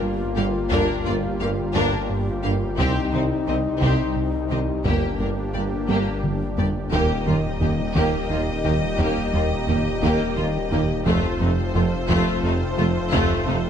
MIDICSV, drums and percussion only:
0, 0, Header, 1, 2, 480
1, 0, Start_track
1, 0, Tempo, 689655
1, 498, Time_signature, 6, 3, 24, 8
1, 9533, End_track
2, 0, Start_track
2, 0, Title_t, "Taiko and cinematic ensemble drums"
2, 497, Note_on_c, 9, 41, 87
2, 567, Note_off_c, 9, 41, 0
2, 1218, Note_on_c, 9, 41, 72
2, 1288, Note_off_c, 9, 41, 0
2, 1935, Note_on_c, 9, 41, 94
2, 2005, Note_off_c, 9, 41, 0
2, 2657, Note_on_c, 9, 41, 67
2, 2727, Note_off_c, 9, 41, 0
2, 3379, Note_on_c, 9, 41, 89
2, 3449, Note_off_c, 9, 41, 0
2, 4099, Note_on_c, 9, 48, 62
2, 4169, Note_off_c, 9, 48, 0
2, 4340, Note_on_c, 9, 47, 73
2, 4410, Note_off_c, 9, 47, 0
2, 4581, Note_on_c, 9, 43, 76
2, 4650, Note_off_c, 9, 43, 0
2, 4821, Note_on_c, 9, 41, 94
2, 4890, Note_off_c, 9, 41, 0
2, 5061, Note_on_c, 9, 43, 45
2, 5130, Note_off_c, 9, 43, 0
2, 5299, Note_on_c, 9, 43, 52
2, 5368, Note_off_c, 9, 43, 0
2, 5538, Note_on_c, 9, 41, 76
2, 5608, Note_off_c, 9, 41, 0
2, 6018, Note_on_c, 9, 43, 46
2, 6088, Note_off_c, 9, 43, 0
2, 6259, Note_on_c, 9, 41, 97
2, 6329, Note_off_c, 9, 41, 0
2, 6499, Note_on_c, 9, 43, 44
2, 6568, Note_off_c, 9, 43, 0
2, 6738, Note_on_c, 9, 43, 57
2, 6808, Note_off_c, 9, 43, 0
2, 6979, Note_on_c, 9, 41, 70
2, 7048, Note_off_c, 9, 41, 0
2, 7458, Note_on_c, 9, 43, 49
2, 7528, Note_off_c, 9, 43, 0
2, 7697, Note_on_c, 9, 41, 101
2, 7766, Note_off_c, 9, 41, 0
2, 7936, Note_on_c, 9, 43, 46
2, 8006, Note_off_c, 9, 43, 0
2, 8178, Note_on_c, 9, 43, 56
2, 8247, Note_off_c, 9, 43, 0
2, 8414, Note_on_c, 9, 41, 73
2, 8484, Note_off_c, 9, 41, 0
2, 8895, Note_on_c, 9, 43, 47
2, 8965, Note_off_c, 9, 43, 0
2, 9136, Note_on_c, 9, 41, 100
2, 9206, Note_off_c, 9, 41, 0
2, 9375, Note_on_c, 9, 43, 49
2, 9445, Note_off_c, 9, 43, 0
2, 9533, End_track
0, 0, End_of_file